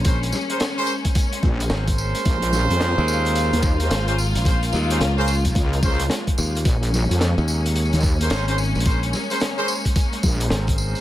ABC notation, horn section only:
X:1
M:4/4
L:1/16
Q:"Swing 16ths" 1/4=109
K:Bbm
V:1 name="Horn section"
[DABc] z2 [DABc] z [DABc] z4 z [DABc]4- [DABc]- | [DABc]8- [DABc]3 [DABc]2 [DABc] z2 | [DABc] z2 [DABc] z [DABc] z4 [DABc] z4 z | z8 z3 [DABc]2 [DABc] z2 |
[DABc] z2 [DABc] z [DABc] z4 z [DABc]4- [DABc] |]